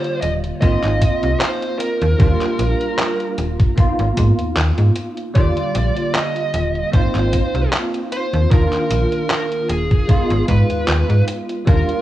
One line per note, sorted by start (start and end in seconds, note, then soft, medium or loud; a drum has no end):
0.00 0.55 D3 medium
0.00 0.54 G3 medium
0.00 0.54 A#3 medium
0.00 0.55 F4 medium
0.00 0.21 C5 loud
0.00 0.02 D5 loud
0.04 closed hi-hat soft
0.21 0.52 D#1 medium
0.21 0.32 D#5 loud
0.21 closed hi-hat medium
0.44 closed hi-hat soft
0.60 0.77 G#1 medium
0.60 2.12 A#3 medium
0.60 2.12 C4 medium
0.60 2.13 D#4 medium
0.60 2.13 F4 medium
0.60 1.43 D#5 loud
0.60 kick loud
0.60 closed hi-hat medium
0.83 1.11 G#1 medium
0.83 clap soft
0.83 closed hi-hat soft
1.01 kick medium
1.01 closed hi-hat medium
1.23 1.36 C2 medium
1.23 closed hi-hat soft
1.39 1.78 C5 loud
1.39 clap loud
1.39 closed hi-hat medium
1.62 closed hi-hat soft
1.79 3.33 A#4 medium
1.79 closed hi-hat loud
2.02 2.15 D#2 loud
2.02 closed hi-hat soft
2.18 2.35 D#2 medium
2.18 3.70 G3 medium
2.18 3.70 A#3 medium
2.18 3.71 D4 medium
2.18 3.71 F4 medium
2.18 kick loud
2.18 closed hi-hat medium
2.42 clap soft
2.42 closed hi-hat soft
2.59 2.75 A#1 medium
2.59 closed hi-hat medium
2.81 closed hi-hat soft
2.99 clap loud
2.99 closed hi-hat medium
3.20 closed hi-hat soft
3.38 3.68 D#1 medium
3.38 closed hi-hat medium
3.60 kick loud
3.60 closed hi-hat soft
3.76 5.28 A#3 medium
3.76 5.28 B3 medium
3.76 5.29 D#4 medium
3.76 5.29 F4 medium
3.76 kick loud
3.76 closed hi-hat medium
3.99 4.12 G#1 medium
3.99 closed hi-hat soft
4.17 4.33 G#2 loud
4.17 kick medium
4.17 closed hi-hat medium
4.39 4.53 D#2 soft
4.39 closed hi-hat soft
4.57 4.72 D#2 medium
4.57 clap loud
4.57 closed hi-hat medium
4.78 4.91 G#2 medium
4.78 closed hi-hat soft
4.96 closed hi-hat medium
5.17 closed hi-hat soft
5.34 5.51 D#2 loud
5.34 6.87 D3 medium
5.34 6.85 G3 medium
5.34 6.86 A#3 medium
5.34 6.87 F4 medium
5.34 6.14 D5 loud
5.34 kick loud
5.34 closed hi-hat medium
5.57 closed hi-hat soft
5.75 5.91 A#1 medium
5.75 closed hi-hat medium
5.96 closed hi-hat soft
6.14 6.89 D#5 loud
6.14 clap loud
6.14 closed hi-hat medium
6.36 closed hi-hat soft
6.54 6.83 D#1 medium
6.54 closed hi-hat medium
6.75 closed hi-hat soft
6.92 7.09 G#1 medium
6.92 8.43 A#3 medium
6.92 8.44 C4 medium
6.92 8.44 D#4 medium
6.92 8.45 F4 medium
6.92 7.69 C5 medium
6.92 kick loud
6.92 closed hi-hat medium
7.15 7.42 G#1 medium
7.15 clap soft
7.15 closed hi-hat soft
7.33 kick medium
7.33 closed hi-hat medium
7.54 7.67 C2 medium
7.54 closed hi-hat soft
7.72 clap loud
7.72 closed hi-hat medium
7.94 closed hi-hat soft
8.12 8.51 C5 loud
8.12 closed hi-hat medium
8.33 8.46 D#2 loud
8.33 closed hi-hat soft
8.49 8.67 D#2 loud
8.49 10.01 D#3 medium
8.49 10.02 A#3 medium
8.49 10.02 D4 medium
8.49 10.03 F4 medium
8.49 9.29 A#4 loud
8.49 kick loud
8.49 closed hi-hat medium
8.73 clap soft
8.73 closed hi-hat soft
8.91 9.06 A#1 medium
8.91 closed hi-hat medium
9.12 closed hi-hat soft
9.30 9.69 A#4 medium
9.30 clap loud
9.30 closed hi-hat medium
9.52 closed hi-hat soft
9.70 9.99 D#1 medium
9.70 10.45 G#4 medium
9.70 closed hi-hat medium
9.91 kick loud
9.91 closed hi-hat soft
10.07 11.59 G#3 medium
10.07 11.59 B3 medium
10.07 11.60 D#4 medium
10.07 11.60 F4 medium
10.07 kick loud
10.07 closed hi-hat medium
10.31 10.44 G#1 medium
10.31 closed hi-hat soft
10.48 10.64 G#2 loud
10.48 11.24 B4 medium
10.48 kick medium
10.48 closed hi-hat medium
10.70 10.85 D#2 soft
10.70 closed hi-hat soft
10.88 11.04 D#2 medium
10.88 clap loud
10.88 closed hi-hat medium
11.09 11.23 G#2 medium
11.09 closed hi-hat soft
11.28 closed hi-hat medium
11.49 closed hi-hat soft
11.65 11.83 D#2 loud
11.65 12.02 G3 medium
11.65 12.02 A#3 medium
11.65 12.02 D4 medium
11.65 12.02 F4 medium
11.65 12.02 A#4 medium
11.65 kick loud
11.65 closed hi-hat medium
11.89 closed hi-hat soft